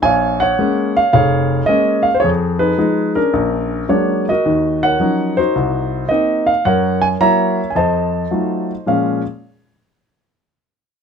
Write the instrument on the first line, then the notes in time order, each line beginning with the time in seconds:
grand piano
0.02 A#1 C#5 F5 G#5
0.40 C#5 F#5
0.59 G#3 A#3 C#4
0.97 F5
1.13 F1 G#4 C#5 F5
1.66 G#3 A#3 C#4 D#5
2.03 F5
2.14 C5
2.20 G#4 C#5
2.24 F2
2.59 D#4 G#4 B4
2.78 F3 G#3 D#4
3.15 C#4 D4 A#4
3.33 A#1
3.89 F#3 G#3 A#3 D4 C#5
4.29 F#4 A#4 D#5
4.45 D#2 D#3
4.83 A#4 C#5 F#5
5.00 F3 F#3 C#4 D#4
5.37 D#4 F#4 C5
5.55 C2
6.09 A#3 C4 D#4 D#5
6.46 F5
6.65 F#2 A#4 C#5 F#5
7.02 G#5
7.20 F#3 A#3 E4 C#5 E5 A#5
7.70 G#5
7.75 F2 C5 D#5 A5
8.31 F#3 A3 D#4 F4
8.86 A#2 F3 G#3 C#4 F5